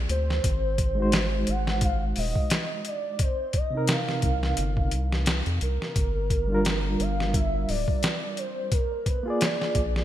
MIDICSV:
0, 0, Header, 1, 5, 480
1, 0, Start_track
1, 0, Tempo, 689655
1, 306, Time_signature, 4, 2, 24, 8
1, 6990, End_track
2, 0, Start_track
2, 0, Title_t, "Soft synth lead"
2, 0, Program_c, 0, 80
2, 74, Note_on_c, 0, 72, 106
2, 1002, Note_off_c, 0, 72, 0
2, 1036, Note_on_c, 0, 78, 110
2, 1255, Note_off_c, 0, 78, 0
2, 1279, Note_on_c, 0, 77, 116
2, 1376, Note_off_c, 0, 77, 0
2, 1519, Note_on_c, 0, 75, 117
2, 1965, Note_off_c, 0, 75, 0
2, 2004, Note_on_c, 0, 74, 92
2, 2239, Note_on_c, 0, 72, 100
2, 2249, Note_off_c, 0, 74, 0
2, 2486, Note_on_c, 0, 75, 90
2, 2496, Note_off_c, 0, 72, 0
2, 2718, Note_on_c, 0, 77, 96
2, 2729, Note_off_c, 0, 75, 0
2, 3432, Note_off_c, 0, 77, 0
2, 3915, Note_on_c, 0, 70, 105
2, 4878, Note_on_c, 0, 77, 106
2, 4888, Note_off_c, 0, 70, 0
2, 5116, Note_on_c, 0, 76, 124
2, 5126, Note_off_c, 0, 77, 0
2, 5354, Note_on_c, 0, 74, 111
2, 5365, Note_off_c, 0, 76, 0
2, 5835, Note_on_c, 0, 72, 93
2, 5845, Note_off_c, 0, 74, 0
2, 6074, Note_on_c, 0, 70, 102
2, 6084, Note_off_c, 0, 72, 0
2, 6311, Note_on_c, 0, 71, 90
2, 6321, Note_off_c, 0, 70, 0
2, 6558, Note_on_c, 0, 74, 87
2, 6568, Note_off_c, 0, 71, 0
2, 6990, Note_off_c, 0, 74, 0
2, 6990, End_track
3, 0, Start_track
3, 0, Title_t, "Reed electric piano"
3, 0, Program_c, 1, 4
3, 0, Note_on_c, 1, 58, 89
3, 0, Note_on_c, 1, 65, 87
3, 0, Note_on_c, 1, 68, 88
3, 0, Note_on_c, 1, 74, 103
3, 282, Note_off_c, 1, 58, 0
3, 292, Note_off_c, 1, 65, 0
3, 298, Note_off_c, 1, 68, 0
3, 307, Note_off_c, 1, 74, 0
3, 661, Note_on_c, 1, 56, 93
3, 680, Note_on_c, 1, 63, 84
3, 694, Note_on_c, 1, 66, 83
3, 711, Note_on_c, 1, 72, 108
3, 2203, Note_off_c, 1, 56, 0
3, 2212, Note_off_c, 1, 63, 0
3, 2220, Note_off_c, 1, 66, 0
3, 2228, Note_off_c, 1, 72, 0
3, 2578, Note_on_c, 1, 48, 90
3, 2595, Note_on_c, 1, 60, 83
3, 2609, Note_on_c, 1, 63, 83
3, 2626, Note_on_c, 1, 70, 108
3, 4122, Note_off_c, 1, 48, 0
3, 4130, Note_off_c, 1, 60, 0
3, 4137, Note_off_c, 1, 63, 0
3, 4146, Note_off_c, 1, 70, 0
3, 4504, Note_on_c, 1, 55, 92
3, 4521, Note_on_c, 1, 62, 83
3, 4539, Note_on_c, 1, 65, 87
3, 4555, Note_on_c, 1, 70, 109
3, 6045, Note_off_c, 1, 55, 0
3, 6053, Note_off_c, 1, 62, 0
3, 6062, Note_off_c, 1, 65, 0
3, 6070, Note_off_c, 1, 70, 0
3, 6425, Note_on_c, 1, 58, 94
3, 6442, Note_on_c, 1, 65, 90
3, 6455, Note_on_c, 1, 68, 91
3, 6473, Note_on_c, 1, 74, 103
3, 6990, Note_off_c, 1, 58, 0
3, 6990, Note_off_c, 1, 65, 0
3, 6990, Note_off_c, 1, 68, 0
3, 6990, Note_off_c, 1, 74, 0
3, 6990, End_track
4, 0, Start_track
4, 0, Title_t, "Analog synth bass"
4, 0, Program_c, 2, 38
4, 64, Note_on_c, 2, 38, 96
4, 280, Note_off_c, 2, 38, 0
4, 308, Note_on_c, 2, 32, 94
4, 1007, Note_off_c, 2, 32, 0
4, 1031, Note_on_c, 2, 32, 80
4, 1488, Note_off_c, 2, 32, 0
4, 1511, Note_on_c, 2, 27, 99
4, 1628, Note_off_c, 2, 27, 0
4, 2943, Note_on_c, 2, 36, 84
4, 3160, Note_off_c, 2, 36, 0
4, 3187, Note_on_c, 2, 31, 101
4, 3425, Note_on_c, 2, 36, 96
4, 3435, Note_off_c, 2, 31, 0
4, 3775, Note_off_c, 2, 36, 0
4, 3803, Note_on_c, 2, 41, 106
4, 3894, Note_off_c, 2, 41, 0
4, 3909, Note_on_c, 2, 36, 83
4, 4027, Note_off_c, 2, 36, 0
4, 4149, Note_on_c, 2, 31, 98
4, 4848, Note_off_c, 2, 31, 0
4, 4870, Note_on_c, 2, 31, 78
4, 5328, Note_off_c, 2, 31, 0
4, 5352, Note_on_c, 2, 26, 105
4, 5468, Note_off_c, 2, 26, 0
4, 6788, Note_on_c, 2, 34, 81
4, 6990, Note_off_c, 2, 34, 0
4, 6990, End_track
5, 0, Start_track
5, 0, Title_t, "Drums"
5, 66, Note_on_c, 9, 42, 66
5, 135, Note_off_c, 9, 42, 0
5, 212, Note_on_c, 9, 38, 46
5, 281, Note_off_c, 9, 38, 0
5, 306, Note_on_c, 9, 36, 105
5, 307, Note_on_c, 9, 42, 89
5, 376, Note_off_c, 9, 36, 0
5, 376, Note_off_c, 9, 42, 0
5, 545, Note_on_c, 9, 36, 89
5, 545, Note_on_c, 9, 42, 63
5, 614, Note_off_c, 9, 42, 0
5, 615, Note_off_c, 9, 36, 0
5, 781, Note_on_c, 9, 42, 78
5, 790, Note_on_c, 9, 38, 113
5, 851, Note_off_c, 9, 42, 0
5, 859, Note_off_c, 9, 38, 0
5, 1022, Note_on_c, 9, 42, 66
5, 1092, Note_off_c, 9, 42, 0
5, 1165, Note_on_c, 9, 38, 54
5, 1234, Note_off_c, 9, 38, 0
5, 1261, Note_on_c, 9, 42, 84
5, 1264, Note_on_c, 9, 36, 103
5, 1330, Note_off_c, 9, 42, 0
5, 1333, Note_off_c, 9, 36, 0
5, 1501, Note_on_c, 9, 46, 80
5, 1571, Note_off_c, 9, 46, 0
5, 1639, Note_on_c, 9, 36, 93
5, 1709, Note_off_c, 9, 36, 0
5, 1741, Note_on_c, 9, 42, 84
5, 1750, Note_on_c, 9, 38, 109
5, 1811, Note_off_c, 9, 42, 0
5, 1819, Note_off_c, 9, 38, 0
5, 1982, Note_on_c, 9, 42, 63
5, 2051, Note_off_c, 9, 42, 0
5, 2220, Note_on_c, 9, 42, 83
5, 2223, Note_on_c, 9, 36, 110
5, 2290, Note_off_c, 9, 42, 0
5, 2293, Note_off_c, 9, 36, 0
5, 2458, Note_on_c, 9, 42, 65
5, 2463, Note_on_c, 9, 36, 83
5, 2528, Note_off_c, 9, 42, 0
5, 2532, Note_off_c, 9, 36, 0
5, 2697, Note_on_c, 9, 42, 90
5, 2705, Note_on_c, 9, 38, 112
5, 2766, Note_off_c, 9, 42, 0
5, 2775, Note_off_c, 9, 38, 0
5, 2844, Note_on_c, 9, 38, 47
5, 2913, Note_off_c, 9, 38, 0
5, 2939, Note_on_c, 9, 42, 61
5, 2942, Note_on_c, 9, 36, 92
5, 3008, Note_off_c, 9, 42, 0
5, 3012, Note_off_c, 9, 36, 0
5, 3083, Note_on_c, 9, 38, 44
5, 3153, Note_off_c, 9, 38, 0
5, 3180, Note_on_c, 9, 42, 89
5, 3250, Note_off_c, 9, 42, 0
5, 3319, Note_on_c, 9, 36, 97
5, 3388, Note_off_c, 9, 36, 0
5, 3421, Note_on_c, 9, 42, 67
5, 3490, Note_off_c, 9, 42, 0
5, 3567, Note_on_c, 9, 38, 52
5, 3637, Note_off_c, 9, 38, 0
5, 3662, Note_on_c, 9, 42, 82
5, 3670, Note_on_c, 9, 38, 118
5, 3731, Note_off_c, 9, 42, 0
5, 3739, Note_off_c, 9, 38, 0
5, 3801, Note_on_c, 9, 42, 41
5, 3871, Note_off_c, 9, 42, 0
5, 3906, Note_on_c, 9, 42, 65
5, 3975, Note_off_c, 9, 42, 0
5, 4051, Note_on_c, 9, 38, 43
5, 4120, Note_off_c, 9, 38, 0
5, 4146, Note_on_c, 9, 42, 86
5, 4147, Note_on_c, 9, 36, 107
5, 4216, Note_off_c, 9, 36, 0
5, 4216, Note_off_c, 9, 42, 0
5, 4387, Note_on_c, 9, 36, 84
5, 4388, Note_on_c, 9, 42, 63
5, 4456, Note_off_c, 9, 36, 0
5, 4458, Note_off_c, 9, 42, 0
5, 4628, Note_on_c, 9, 42, 89
5, 4637, Note_on_c, 9, 38, 112
5, 4698, Note_off_c, 9, 42, 0
5, 4706, Note_off_c, 9, 38, 0
5, 4871, Note_on_c, 9, 42, 65
5, 4941, Note_off_c, 9, 42, 0
5, 5014, Note_on_c, 9, 38, 50
5, 5083, Note_off_c, 9, 38, 0
5, 5108, Note_on_c, 9, 36, 111
5, 5110, Note_on_c, 9, 42, 92
5, 5178, Note_off_c, 9, 36, 0
5, 5180, Note_off_c, 9, 42, 0
5, 5350, Note_on_c, 9, 46, 82
5, 5420, Note_off_c, 9, 46, 0
5, 5483, Note_on_c, 9, 36, 96
5, 5553, Note_off_c, 9, 36, 0
5, 5587, Note_on_c, 9, 42, 87
5, 5595, Note_on_c, 9, 38, 112
5, 5656, Note_off_c, 9, 42, 0
5, 5665, Note_off_c, 9, 38, 0
5, 5827, Note_on_c, 9, 42, 62
5, 5896, Note_off_c, 9, 42, 0
5, 6066, Note_on_c, 9, 42, 87
5, 6067, Note_on_c, 9, 36, 112
5, 6136, Note_off_c, 9, 42, 0
5, 6137, Note_off_c, 9, 36, 0
5, 6307, Note_on_c, 9, 36, 89
5, 6307, Note_on_c, 9, 42, 60
5, 6376, Note_off_c, 9, 36, 0
5, 6377, Note_off_c, 9, 42, 0
5, 6548, Note_on_c, 9, 42, 85
5, 6557, Note_on_c, 9, 38, 107
5, 6618, Note_off_c, 9, 42, 0
5, 6626, Note_off_c, 9, 38, 0
5, 6692, Note_on_c, 9, 38, 45
5, 6762, Note_off_c, 9, 38, 0
5, 6785, Note_on_c, 9, 42, 66
5, 6786, Note_on_c, 9, 36, 86
5, 6855, Note_off_c, 9, 42, 0
5, 6856, Note_off_c, 9, 36, 0
5, 6933, Note_on_c, 9, 38, 44
5, 6990, Note_off_c, 9, 38, 0
5, 6990, End_track
0, 0, End_of_file